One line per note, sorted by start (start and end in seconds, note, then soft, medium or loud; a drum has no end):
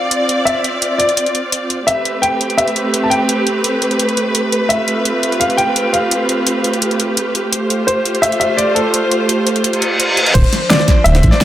0.00 1.85 C4 medium
0.00 1.84 F4 medium
0.00 1.85 D5 medium
0.00 0.48 F5 medium
0.11 closed hi-hat medium
0.29 closed hi-hat medium
0.45 0.95 E5 medium
0.45 closed hi-hat medium
0.64 closed hi-hat medium
0.82 closed hi-hat medium
0.98 1.66 D5 medium
0.98 closed hi-hat medium
1.09 closed hi-hat soft
1.17 closed hi-hat medium
1.26 closed hi-hat soft
1.35 closed hi-hat medium
1.52 closed hi-hat medium
1.70 closed hi-hat medium
1.87 7.49 A3 medium
1.87 4.68 C4 medium
1.87 4.67 G4 medium
1.87 7.49 B4 medium
1.87 2.24 E5 medium
1.87 closed hi-hat medium
2.05 closed hi-hat medium
2.22 2.59 G5 medium
2.22 closed hi-hat medium
2.41 closed hi-hat medium
2.50 closed hi-hat soft
2.57 3.06 E5 medium
2.57 closed hi-hat medium
2.68 closed hi-hat soft
2.76 closed hi-hat medium
2.94 closed hi-hat medium
3.03 3.11 A5 medium
3.10 3.44 G5 medium
3.10 closed hi-hat medium
3.29 closed hi-hat medium
3.47 closed hi-hat medium
3.64 closed hi-hat medium
3.82 closed hi-hat medium
3.91 closed hi-hat soft
3.99 closed hi-hat medium
4.09 closed hi-hat soft
4.17 closed hi-hat medium
4.35 closed hi-hat medium
4.52 closed hi-hat medium
4.69 7.50 C4 medium
4.69 7.50 F4 medium
4.69 10.31 G4 medium
4.69 5.36 E5 medium
4.69 closed hi-hat medium
4.88 closed hi-hat medium
5.05 closed hi-hat medium
5.23 closed hi-hat medium
5.32 closed hi-hat soft
5.40 5.59 F5 medium
5.40 closed hi-hat medium
5.50 closed hi-hat soft
5.57 5.94 G5 loud
5.57 closed hi-hat medium
5.76 closed hi-hat medium
5.93 6.95 F5 medium
5.93 closed hi-hat medium
6.11 closed hi-hat medium
6.29 closed hi-hat medium
6.47 closed hi-hat medium
6.64 closed hi-hat medium
6.73 closed hi-hat soft
6.82 closed hi-hat medium
6.91 closed hi-hat soft
7.00 closed hi-hat medium
7.17 closed hi-hat medium
7.35 closed hi-hat medium
7.52 10.32 A3 medium
7.52 10.32 F4 medium
7.52 10.32 C5 medium
7.52 closed hi-hat medium
7.70 closed hi-hat medium
7.87 8.24 C5 medium
7.87 closed hi-hat medium
8.05 closed hi-hat medium
8.15 closed hi-hat soft
8.22 8.38 E5 loud
8.22 closed hi-hat medium
8.32 closed hi-hat soft
8.40 8.57 E5 medium
8.40 closed hi-hat medium
8.57 8.76 D5 medium
8.57 closed hi-hat medium
8.75 10.13 A4 medium
8.75 closed hi-hat medium
8.94 closed hi-hat medium
9.11 closed hi-hat medium
9.29 closed hi-hat medium
9.47 closed hi-hat medium
9.56 closed hi-hat soft
9.64 closed hi-hat medium
9.64 reverse cymbal medium
9.73 closed hi-hat soft
9.82 closed hi-hat medium
10.00 closed hi-hat medium
10.17 closed hi-hat medium
10.26 closed hi-hat soft
10.34 10.43 D1 loud
10.34 11.44 F3 medium
10.34 11.44 D4 medium
10.34 10.67 C5 medium
10.34 11.44 C5 medium
10.34 kick loud
10.34 closed hi-hat loud
10.34 closed hi-hat medium
10.34 crash loud
10.44 closed hi-hat soft
10.53 snare soft
10.53 closed hi-hat medium
10.69 11.06 D5 loud
10.69 snare loud
10.69 closed hi-hat medium
10.69 closed hi-hat loud
10.80 snare soft
10.88 kick medium
10.88 snare medium
10.88 closed hi-hat medium
11.04 11.21 D1 medium
11.04 11.30 E5 loud
11.04 closed hi-hat medium
11.15 snare medium
11.15 closed hi-hat soft
11.23 11.31 A1 loud
11.23 kick loud
11.23 closed hi-hat medium
11.31 11.44 D5 loud
11.31 snare soft
11.31 snare medium
11.41 snare loud
11.41 closed hi-hat loud
11.41 closed hi-hat medium